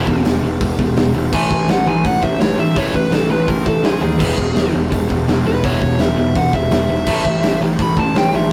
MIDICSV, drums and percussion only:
0, 0, Header, 1, 2, 480
1, 0, Start_track
1, 0, Tempo, 359281
1, 1773, Time_signature, 4, 2, 24, 8
1, 11389, End_track
2, 0, Start_track
2, 0, Title_t, "Drums"
2, 95, Note_on_c, 9, 36, 99
2, 229, Note_off_c, 9, 36, 0
2, 334, Note_on_c, 9, 46, 59
2, 346, Note_on_c, 9, 38, 106
2, 468, Note_off_c, 9, 46, 0
2, 480, Note_off_c, 9, 38, 0
2, 814, Note_on_c, 9, 36, 126
2, 814, Note_on_c, 9, 46, 81
2, 948, Note_off_c, 9, 36, 0
2, 948, Note_off_c, 9, 46, 0
2, 1053, Note_on_c, 9, 36, 102
2, 1187, Note_off_c, 9, 36, 0
2, 1292, Note_on_c, 9, 46, 70
2, 1304, Note_on_c, 9, 38, 127
2, 1425, Note_off_c, 9, 46, 0
2, 1437, Note_off_c, 9, 38, 0
2, 1774, Note_on_c, 9, 36, 126
2, 1774, Note_on_c, 9, 49, 114
2, 1907, Note_off_c, 9, 36, 0
2, 1907, Note_off_c, 9, 49, 0
2, 2013, Note_on_c, 9, 36, 96
2, 2146, Note_off_c, 9, 36, 0
2, 2249, Note_on_c, 9, 46, 58
2, 2261, Note_on_c, 9, 38, 117
2, 2382, Note_off_c, 9, 46, 0
2, 2394, Note_off_c, 9, 38, 0
2, 2735, Note_on_c, 9, 36, 115
2, 2736, Note_on_c, 9, 46, 59
2, 2869, Note_off_c, 9, 36, 0
2, 2869, Note_off_c, 9, 46, 0
2, 2974, Note_on_c, 9, 36, 93
2, 3108, Note_off_c, 9, 36, 0
2, 3217, Note_on_c, 9, 46, 74
2, 3229, Note_on_c, 9, 38, 124
2, 3350, Note_off_c, 9, 46, 0
2, 3362, Note_off_c, 9, 38, 0
2, 3691, Note_on_c, 9, 46, 68
2, 3692, Note_on_c, 9, 36, 123
2, 3824, Note_off_c, 9, 46, 0
2, 3826, Note_off_c, 9, 36, 0
2, 3932, Note_on_c, 9, 36, 82
2, 4066, Note_off_c, 9, 36, 0
2, 4168, Note_on_c, 9, 46, 64
2, 4180, Note_on_c, 9, 38, 105
2, 4302, Note_off_c, 9, 46, 0
2, 4314, Note_off_c, 9, 38, 0
2, 4652, Note_on_c, 9, 36, 106
2, 4654, Note_on_c, 9, 46, 69
2, 4785, Note_off_c, 9, 36, 0
2, 4787, Note_off_c, 9, 46, 0
2, 4891, Note_on_c, 9, 36, 104
2, 5025, Note_off_c, 9, 36, 0
2, 5130, Note_on_c, 9, 46, 73
2, 5142, Note_on_c, 9, 38, 127
2, 5263, Note_off_c, 9, 46, 0
2, 5275, Note_off_c, 9, 38, 0
2, 5614, Note_on_c, 9, 36, 122
2, 5615, Note_on_c, 9, 49, 118
2, 5747, Note_off_c, 9, 36, 0
2, 5749, Note_off_c, 9, 49, 0
2, 5851, Note_on_c, 9, 36, 97
2, 5985, Note_off_c, 9, 36, 0
2, 6093, Note_on_c, 9, 46, 62
2, 6105, Note_on_c, 9, 38, 108
2, 6227, Note_off_c, 9, 46, 0
2, 6239, Note_off_c, 9, 38, 0
2, 6574, Note_on_c, 9, 36, 116
2, 6579, Note_on_c, 9, 46, 66
2, 6708, Note_off_c, 9, 36, 0
2, 6712, Note_off_c, 9, 46, 0
2, 6816, Note_on_c, 9, 36, 89
2, 6949, Note_off_c, 9, 36, 0
2, 7058, Note_on_c, 9, 46, 72
2, 7070, Note_on_c, 9, 38, 118
2, 7192, Note_off_c, 9, 46, 0
2, 7204, Note_off_c, 9, 38, 0
2, 7531, Note_on_c, 9, 46, 66
2, 7533, Note_on_c, 9, 36, 120
2, 7665, Note_off_c, 9, 46, 0
2, 7666, Note_off_c, 9, 36, 0
2, 7772, Note_on_c, 9, 36, 87
2, 7905, Note_off_c, 9, 36, 0
2, 8005, Note_on_c, 9, 46, 60
2, 8017, Note_on_c, 9, 38, 102
2, 8139, Note_off_c, 9, 46, 0
2, 8151, Note_off_c, 9, 38, 0
2, 8490, Note_on_c, 9, 36, 118
2, 8494, Note_on_c, 9, 46, 75
2, 8623, Note_off_c, 9, 36, 0
2, 8627, Note_off_c, 9, 46, 0
2, 8728, Note_on_c, 9, 36, 102
2, 8862, Note_off_c, 9, 36, 0
2, 8968, Note_on_c, 9, 46, 69
2, 8980, Note_on_c, 9, 38, 127
2, 9102, Note_off_c, 9, 46, 0
2, 9114, Note_off_c, 9, 38, 0
2, 9439, Note_on_c, 9, 49, 115
2, 9444, Note_on_c, 9, 36, 126
2, 9573, Note_off_c, 9, 49, 0
2, 9578, Note_off_c, 9, 36, 0
2, 9686, Note_on_c, 9, 36, 88
2, 9819, Note_off_c, 9, 36, 0
2, 9928, Note_on_c, 9, 46, 61
2, 9940, Note_on_c, 9, 38, 103
2, 10062, Note_off_c, 9, 46, 0
2, 10074, Note_off_c, 9, 38, 0
2, 10407, Note_on_c, 9, 36, 127
2, 10409, Note_on_c, 9, 46, 69
2, 10541, Note_off_c, 9, 36, 0
2, 10542, Note_off_c, 9, 46, 0
2, 10647, Note_on_c, 9, 36, 102
2, 10780, Note_off_c, 9, 36, 0
2, 10894, Note_on_c, 9, 46, 76
2, 10906, Note_on_c, 9, 38, 127
2, 11028, Note_off_c, 9, 46, 0
2, 11040, Note_off_c, 9, 38, 0
2, 11389, End_track
0, 0, End_of_file